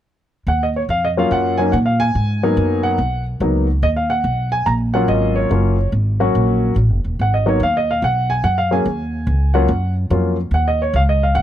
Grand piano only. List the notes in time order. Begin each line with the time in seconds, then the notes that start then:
0.48 F#5
0.63 D#5
0.76 C#5
0.90 F5
1.05 D#5
1.17 F#3 A#3 C#4 F4 F5
1.32 F#5
1.57 F#3 A#3 C#4 D#4 G#5
1.72 F#5
1.86 F5
2.00 G#5
2.43 F#3 A#3 B3 D#4
2.83 F#5
3.41 F#3 A#3 B3 D#4
3.83 D#5
3.96 F5
4.10 F#5
4.52 G#5
4.66 A#5
4.94 F#3 A#3 C#4 F4 F#5
5.09 D#5
5.36 C#5
5.51 F#3 A#3 C#4 F4
6.20 F#3 A#3 C#4 F#4
7.21 F#5
7.34 D#5
7.46 F#3 A#3 B3 D#4 C#5
7.63 F5
7.77 D#5
7.91 F5
8.04 F#5
8.30 G#5
8.44 F#5
8.58 F5
8.71 F#3 A#3 C#4 G#4 G#5
9.54 F#3 A#3 C#4 F4 F#5
10.11 F#3 A#3 C#4 F4
10.54 F#5
10.68 D#5
10.82 C#5
10.96 F5
11.09 D#5
11.23 F5
11.35 F#5